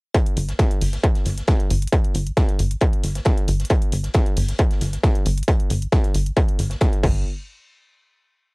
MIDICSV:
0, 0, Header, 1, 3, 480
1, 0, Start_track
1, 0, Tempo, 444444
1, 158, Time_signature, 4, 2, 24, 8
1, 9231, End_track
2, 0, Start_track
2, 0, Title_t, "Analog synth bass"
2, 0, Program_c, 0, 38
2, 398, Note_on_c, 0, 31, 99
2, 570, Note_off_c, 0, 31, 0
2, 878, Note_on_c, 0, 31, 89
2, 1051, Note_off_c, 0, 31, 0
2, 1358, Note_on_c, 0, 31, 84
2, 1530, Note_off_c, 0, 31, 0
2, 1838, Note_on_c, 0, 31, 102
2, 2010, Note_off_c, 0, 31, 0
2, 2318, Note_on_c, 0, 31, 97
2, 2491, Note_off_c, 0, 31, 0
2, 2799, Note_on_c, 0, 31, 87
2, 2971, Note_off_c, 0, 31, 0
2, 3279, Note_on_c, 0, 31, 80
2, 3451, Note_off_c, 0, 31, 0
2, 3759, Note_on_c, 0, 31, 99
2, 3931, Note_off_c, 0, 31, 0
2, 4239, Note_on_c, 0, 31, 94
2, 4411, Note_off_c, 0, 31, 0
2, 4719, Note_on_c, 0, 31, 88
2, 4891, Note_off_c, 0, 31, 0
2, 5198, Note_on_c, 0, 31, 80
2, 5370, Note_off_c, 0, 31, 0
2, 5678, Note_on_c, 0, 31, 101
2, 5850, Note_off_c, 0, 31, 0
2, 6158, Note_on_c, 0, 31, 96
2, 6331, Note_off_c, 0, 31, 0
2, 6638, Note_on_c, 0, 31, 89
2, 6810, Note_off_c, 0, 31, 0
2, 7117, Note_on_c, 0, 31, 87
2, 7290, Note_off_c, 0, 31, 0
2, 7598, Note_on_c, 0, 31, 93
2, 7821, Note_off_c, 0, 31, 0
2, 9231, End_track
3, 0, Start_track
3, 0, Title_t, "Drums"
3, 158, Note_on_c, 9, 36, 115
3, 158, Note_on_c, 9, 42, 78
3, 266, Note_off_c, 9, 36, 0
3, 266, Note_off_c, 9, 42, 0
3, 286, Note_on_c, 9, 42, 52
3, 394, Note_off_c, 9, 42, 0
3, 396, Note_on_c, 9, 42, 65
3, 399, Note_on_c, 9, 46, 104
3, 504, Note_off_c, 9, 42, 0
3, 507, Note_off_c, 9, 46, 0
3, 523, Note_on_c, 9, 38, 44
3, 526, Note_on_c, 9, 42, 51
3, 631, Note_off_c, 9, 38, 0
3, 634, Note_off_c, 9, 42, 0
3, 637, Note_on_c, 9, 42, 88
3, 638, Note_on_c, 9, 36, 119
3, 638, Note_on_c, 9, 38, 108
3, 639, Note_off_c, 9, 42, 0
3, 639, Note_on_c, 9, 42, 82
3, 746, Note_off_c, 9, 36, 0
3, 746, Note_off_c, 9, 38, 0
3, 747, Note_off_c, 9, 42, 0
3, 766, Note_on_c, 9, 42, 54
3, 874, Note_off_c, 9, 42, 0
3, 879, Note_on_c, 9, 46, 106
3, 887, Note_off_c, 9, 46, 0
3, 887, Note_on_c, 9, 46, 74
3, 995, Note_off_c, 9, 46, 0
3, 1005, Note_on_c, 9, 38, 50
3, 1006, Note_on_c, 9, 42, 51
3, 1113, Note_off_c, 9, 38, 0
3, 1114, Note_off_c, 9, 42, 0
3, 1118, Note_on_c, 9, 36, 123
3, 1119, Note_on_c, 9, 42, 79
3, 1126, Note_off_c, 9, 42, 0
3, 1126, Note_on_c, 9, 42, 77
3, 1226, Note_off_c, 9, 36, 0
3, 1234, Note_off_c, 9, 42, 0
3, 1244, Note_on_c, 9, 38, 39
3, 1246, Note_on_c, 9, 42, 53
3, 1352, Note_off_c, 9, 38, 0
3, 1353, Note_off_c, 9, 42, 0
3, 1353, Note_on_c, 9, 42, 60
3, 1356, Note_on_c, 9, 38, 47
3, 1358, Note_on_c, 9, 46, 98
3, 1461, Note_off_c, 9, 42, 0
3, 1464, Note_off_c, 9, 38, 0
3, 1466, Note_off_c, 9, 46, 0
3, 1486, Note_on_c, 9, 42, 53
3, 1490, Note_on_c, 9, 38, 39
3, 1594, Note_off_c, 9, 42, 0
3, 1594, Note_on_c, 9, 42, 95
3, 1598, Note_off_c, 9, 38, 0
3, 1598, Note_on_c, 9, 36, 119
3, 1600, Note_off_c, 9, 42, 0
3, 1600, Note_on_c, 9, 42, 82
3, 1612, Note_on_c, 9, 38, 119
3, 1706, Note_off_c, 9, 36, 0
3, 1708, Note_off_c, 9, 42, 0
3, 1720, Note_off_c, 9, 38, 0
3, 1728, Note_on_c, 9, 42, 52
3, 1836, Note_off_c, 9, 42, 0
3, 1841, Note_on_c, 9, 46, 106
3, 1847, Note_on_c, 9, 42, 65
3, 1949, Note_off_c, 9, 46, 0
3, 1955, Note_off_c, 9, 42, 0
3, 1967, Note_on_c, 9, 42, 51
3, 2024, Note_off_c, 9, 42, 0
3, 2024, Note_on_c, 9, 42, 69
3, 2078, Note_on_c, 9, 36, 123
3, 2080, Note_off_c, 9, 42, 0
3, 2080, Note_on_c, 9, 42, 77
3, 2186, Note_off_c, 9, 36, 0
3, 2188, Note_off_c, 9, 42, 0
3, 2208, Note_on_c, 9, 42, 53
3, 2315, Note_off_c, 9, 42, 0
3, 2315, Note_on_c, 9, 42, 61
3, 2320, Note_on_c, 9, 46, 110
3, 2423, Note_off_c, 9, 42, 0
3, 2428, Note_off_c, 9, 46, 0
3, 2446, Note_on_c, 9, 42, 53
3, 2554, Note_off_c, 9, 42, 0
3, 2558, Note_on_c, 9, 36, 116
3, 2558, Note_on_c, 9, 42, 81
3, 2560, Note_on_c, 9, 38, 121
3, 2561, Note_off_c, 9, 42, 0
3, 2561, Note_on_c, 9, 42, 93
3, 2666, Note_off_c, 9, 36, 0
3, 2668, Note_off_c, 9, 38, 0
3, 2669, Note_off_c, 9, 42, 0
3, 2685, Note_on_c, 9, 42, 54
3, 2793, Note_off_c, 9, 42, 0
3, 2798, Note_on_c, 9, 46, 109
3, 2803, Note_on_c, 9, 42, 61
3, 2906, Note_off_c, 9, 46, 0
3, 2911, Note_off_c, 9, 42, 0
3, 2925, Note_on_c, 9, 42, 53
3, 3031, Note_off_c, 9, 42, 0
3, 3031, Note_on_c, 9, 42, 86
3, 3038, Note_on_c, 9, 36, 120
3, 3039, Note_off_c, 9, 42, 0
3, 3039, Note_on_c, 9, 42, 82
3, 3146, Note_off_c, 9, 36, 0
3, 3147, Note_off_c, 9, 42, 0
3, 3165, Note_on_c, 9, 42, 53
3, 3273, Note_off_c, 9, 42, 0
3, 3278, Note_on_c, 9, 46, 109
3, 3279, Note_on_c, 9, 38, 39
3, 3279, Note_on_c, 9, 42, 66
3, 3386, Note_off_c, 9, 46, 0
3, 3387, Note_off_c, 9, 38, 0
3, 3387, Note_off_c, 9, 42, 0
3, 3405, Note_on_c, 9, 42, 53
3, 3406, Note_on_c, 9, 38, 55
3, 3508, Note_off_c, 9, 42, 0
3, 3508, Note_on_c, 9, 42, 89
3, 3512, Note_off_c, 9, 38, 0
3, 3512, Note_on_c, 9, 38, 112
3, 3517, Note_off_c, 9, 42, 0
3, 3517, Note_on_c, 9, 42, 82
3, 3518, Note_on_c, 9, 36, 121
3, 3620, Note_off_c, 9, 38, 0
3, 3625, Note_off_c, 9, 42, 0
3, 3626, Note_off_c, 9, 36, 0
3, 3645, Note_on_c, 9, 42, 54
3, 3753, Note_off_c, 9, 42, 0
3, 3758, Note_on_c, 9, 42, 64
3, 3758, Note_on_c, 9, 46, 109
3, 3866, Note_off_c, 9, 42, 0
3, 3866, Note_off_c, 9, 46, 0
3, 3885, Note_on_c, 9, 42, 53
3, 3886, Note_on_c, 9, 38, 39
3, 3941, Note_off_c, 9, 42, 0
3, 3941, Note_on_c, 9, 42, 68
3, 3994, Note_off_c, 9, 38, 0
3, 3994, Note_off_c, 9, 42, 0
3, 3994, Note_on_c, 9, 42, 75
3, 3998, Note_on_c, 9, 36, 126
3, 4102, Note_off_c, 9, 42, 0
3, 4106, Note_off_c, 9, 36, 0
3, 4124, Note_on_c, 9, 42, 51
3, 4232, Note_off_c, 9, 42, 0
3, 4237, Note_on_c, 9, 46, 109
3, 4240, Note_on_c, 9, 42, 72
3, 4345, Note_off_c, 9, 46, 0
3, 4348, Note_off_c, 9, 42, 0
3, 4358, Note_on_c, 9, 38, 43
3, 4364, Note_on_c, 9, 42, 50
3, 4466, Note_off_c, 9, 38, 0
3, 4469, Note_off_c, 9, 42, 0
3, 4469, Note_on_c, 9, 42, 96
3, 4477, Note_off_c, 9, 42, 0
3, 4477, Note_on_c, 9, 36, 127
3, 4477, Note_on_c, 9, 42, 80
3, 4480, Note_on_c, 9, 38, 123
3, 4585, Note_off_c, 9, 36, 0
3, 4585, Note_off_c, 9, 42, 0
3, 4588, Note_off_c, 9, 38, 0
3, 4604, Note_on_c, 9, 42, 52
3, 4712, Note_off_c, 9, 42, 0
3, 4716, Note_on_c, 9, 46, 78
3, 4717, Note_off_c, 9, 46, 0
3, 4717, Note_on_c, 9, 46, 114
3, 4825, Note_off_c, 9, 46, 0
3, 4843, Note_on_c, 9, 42, 55
3, 4848, Note_on_c, 9, 38, 47
3, 4951, Note_off_c, 9, 42, 0
3, 4953, Note_on_c, 9, 42, 79
3, 4956, Note_off_c, 9, 38, 0
3, 4957, Note_off_c, 9, 42, 0
3, 4957, Note_on_c, 9, 42, 83
3, 4958, Note_on_c, 9, 36, 122
3, 5065, Note_off_c, 9, 42, 0
3, 5066, Note_off_c, 9, 36, 0
3, 5084, Note_on_c, 9, 42, 53
3, 5089, Note_on_c, 9, 38, 42
3, 5192, Note_off_c, 9, 42, 0
3, 5194, Note_on_c, 9, 42, 65
3, 5197, Note_off_c, 9, 38, 0
3, 5198, Note_on_c, 9, 46, 105
3, 5201, Note_on_c, 9, 38, 52
3, 5302, Note_off_c, 9, 42, 0
3, 5306, Note_off_c, 9, 46, 0
3, 5309, Note_off_c, 9, 38, 0
3, 5324, Note_on_c, 9, 38, 40
3, 5326, Note_on_c, 9, 42, 53
3, 5432, Note_off_c, 9, 38, 0
3, 5434, Note_off_c, 9, 42, 0
3, 5437, Note_on_c, 9, 36, 127
3, 5437, Note_on_c, 9, 42, 83
3, 5438, Note_off_c, 9, 42, 0
3, 5438, Note_on_c, 9, 42, 81
3, 5441, Note_on_c, 9, 38, 122
3, 5545, Note_off_c, 9, 36, 0
3, 5546, Note_off_c, 9, 42, 0
3, 5549, Note_off_c, 9, 38, 0
3, 5566, Note_on_c, 9, 42, 53
3, 5674, Note_off_c, 9, 42, 0
3, 5676, Note_on_c, 9, 42, 66
3, 5678, Note_on_c, 9, 46, 110
3, 5784, Note_off_c, 9, 42, 0
3, 5786, Note_off_c, 9, 46, 0
3, 5805, Note_on_c, 9, 42, 52
3, 5862, Note_off_c, 9, 42, 0
3, 5862, Note_on_c, 9, 42, 66
3, 5917, Note_off_c, 9, 42, 0
3, 5917, Note_on_c, 9, 36, 123
3, 5917, Note_on_c, 9, 42, 90
3, 5919, Note_off_c, 9, 42, 0
3, 5919, Note_on_c, 9, 42, 79
3, 6025, Note_off_c, 9, 36, 0
3, 6027, Note_off_c, 9, 42, 0
3, 6046, Note_on_c, 9, 42, 51
3, 6154, Note_off_c, 9, 42, 0
3, 6154, Note_on_c, 9, 42, 73
3, 6159, Note_on_c, 9, 46, 106
3, 6262, Note_off_c, 9, 42, 0
3, 6267, Note_off_c, 9, 46, 0
3, 6286, Note_on_c, 9, 42, 54
3, 6394, Note_off_c, 9, 42, 0
3, 6395, Note_on_c, 9, 42, 85
3, 6397, Note_on_c, 9, 36, 127
3, 6398, Note_off_c, 9, 42, 0
3, 6398, Note_on_c, 9, 42, 76
3, 6403, Note_on_c, 9, 38, 126
3, 6505, Note_off_c, 9, 36, 0
3, 6506, Note_off_c, 9, 42, 0
3, 6511, Note_off_c, 9, 38, 0
3, 6525, Note_on_c, 9, 42, 48
3, 6633, Note_off_c, 9, 42, 0
3, 6636, Note_on_c, 9, 46, 112
3, 6639, Note_on_c, 9, 42, 75
3, 6744, Note_off_c, 9, 46, 0
3, 6747, Note_off_c, 9, 42, 0
3, 6764, Note_on_c, 9, 42, 50
3, 6872, Note_off_c, 9, 42, 0
3, 6875, Note_on_c, 9, 42, 78
3, 6877, Note_off_c, 9, 42, 0
3, 6877, Note_on_c, 9, 36, 126
3, 6877, Note_on_c, 9, 42, 76
3, 6985, Note_off_c, 9, 36, 0
3, 6985, Note_off_c, 9, 42, 0
3, 7004, Note_on_c, 9, 42, 49
3, 7112, Note_off_c, 9, 42, 0
3, 7114, Note_on_c, 9, 38, 39
3, 7118, Note_on_c, 9, 46, 106
3, 7119, Note_on_c, 9, 42, 65
3, 7222, Note_off_c, 9, 38, 0
3, 7226, Note_off_c, 9, 46, 0
3, 7227, Note_off_c, 9, 42, 0
3, 7236, Note_on_c, 9, 38, 57
3, 7246, Note_on_c, 9, 42, 51
3, 7344, Note_off_c, 9, 38, 0
3, 7352, Note_off_c, 9, 42, 0
3, 7352, Note_on_c, 9, 42, 81
3, 7356, Note_on_c, 9, 38, 119
3, 7357, Note_on_c, 9, 36, 123
3, 7358, Note_off_c, 9, 42, 0
3, 7358, Note_on_c, 9, 42, 81
3, 7464, Note_off_c, 9, 38, 0
3, 7465, Note_off_c, 9, 36, 0
3, 7466, Note_off_c, 9, 42, 0
3, 7484, Note_on_c, 9, 42, 53
3, 7592, Note_off_c, 9, 42, 0
3, 7597, Note_on_c, 9, 36, 108
3, 7597, Note_on_c, 9, 49, 84
3, 7705, Note_off_c, 9, 36, 0
3, 7705, Note_off_c, 9, 49, 0
3, 9231, End_track
0, 0, End_of_file